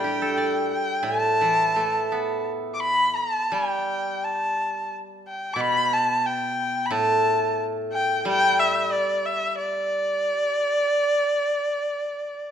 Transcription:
Already playing: A2 G3 D4 G5
0.04 G4
0.22 A4
0.38 D5
0.71 G5
1.03 A2 A5
1.41 E3
1.76 A3
2.12 B3
2.74 D6
2.81 B5
3.16 A5
3.52 G3 G5
4.24 A5
5.28 G5
5.54 B2 D6
5.61 B5
5.93 A5
6.26 G5
6.86 B5
6.90 A2 A5
7.93 G5
8.25 G3 G5
8.60 E5
8.92 D5
9.25 E5
9.58 D5

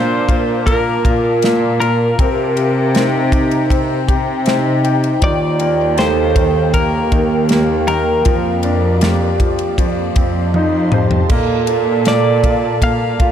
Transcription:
Already playing: A#2 A#3 D4 F4 A#4 C5 F5 A5 D6
0.28 F4, kick, ride
0.67 A#3 F4 A#4, kick, ride
1.05 A#2 F4, kick, ride
1.42 A#3, snare, ride
1.80 F4 A#4, ride
2.17 C3 C4 G4 C5 G5 A#5, kick, ride
2.56 G4, ride
2.94 C4 D#4, snare, ride
3.32 G4, kick, ride
3.51 ride
3.70 C4, kick, ride
4.08 C3 G4, kick, ride
4.46 C4 D#4, snare, ride
4.84 G4, ride
5.04 ride
5.21 D#2 D#3 A#3 F4 D5 F5, kick, ride
5.60 A#3, ride
5.98 G4 A4 C5, snare, ride
6.36 D#3, kick, ride
6.74 A#3 G4 A#4, kick, ride
7.12 D#2 D#3, kick, ride
7.49 A#3, snare, ride
7.88 D#3 A#4, ride
8.25 F2 F3 F4 D5 D6, kick, ride
8.63 D4, ride
8.94 F#4
9.01 F4 G4, snare, ride
9.40 F3, kick, ride
9.59 ride
9.77 F2 F3 F4 D#5 F5 A5 C6, kick, ride
10.16 F2 C4, kick, ride
10.54 D#4, high tom
10.92 G4 C5, mid tom
11.11 floor tom
11.29 A#2 A#3 A4 D5, kick, crash
11.67 F4, ride
12.05 A#3 D5, snare, ride
12.44 F4, kick, ride
12.82 A#3 F5, kick, ride
13.20 A#2 F4, kick, ride

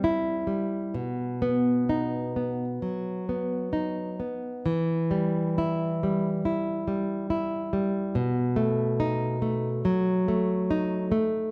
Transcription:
Already playing: G3 C4
0.04 E4
0.47 G3
0.94 B2
1.42 B3
1.89 D#4
2.36 B3
2.82 F#3
3.29 B3
3.73 D#4
4.20 B3
4.66 E3
5.11 G3
5.58 E4
6.03 G3
6.45 E4
6.88 G3
7.30 E4
7.73 G3
8.15 B2
8.56 A3
9.00 D#4
9.42 A3
9.85 F#3
10.28 A3
10.71 D#4
11.12 A3

